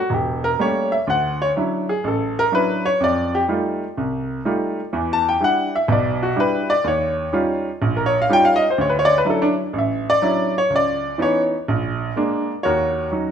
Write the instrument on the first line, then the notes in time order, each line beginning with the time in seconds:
grand piano
Already playing: F#4
0.10 E1 G4
0.44 A#4
0.59 G3 A3 A#3 C#4 C#5
0.92 E5
1.07 D2 F#5
1.42 C#5
1.56 F#3 C#4 D4 E4
1.89 G#4
2.04 A1 A4
2.39 A#4
2.52 F#3 C#4 D4 E4 B4
2.86 C#5
3.00 F2 D5
3.35 G4
3.48 G3 A3 D#4 F4
3.98 C2
4.45 G3 A3 D#4 F4
4.93 E2 E3
5.13 A5
5.29 G5
5.40 G3 D4 E4 F#5
5.76 E5
5.88 B1 B2 D5
6.23 F#4
6.36 G3 D4 E4 B4
6.70 D5
6.84 D#2 C#5
7.33 G3 C#4 D#4 F4
7.82 A#1
7.97 A#4
8.06 C#5
8.22 F5
8.29 G3 C#4 D#4 F4 G5
8.45 F5
8.56 D#5
8.70 C5
8.78 D2 C#5
8.89 B4
8.99 C#5
9.05 D5
9.18 B4
9.25 F#3 C#4 D4 E4
9.30 A4
9.42 D4
9.73 A1
9.78 E5
10.10 D5
10.22 F#3 C#4 D4 E4
10.58 C#5
10.70 C#2
10.76 D5
11.18 E3 B3 C#4 D#4
11.22 C#5
11.68 A#1
12.16 G#3 A#3 D4
12.63 D#2 F#4 A#4 C#5
13.12 F#3 C#4 D#4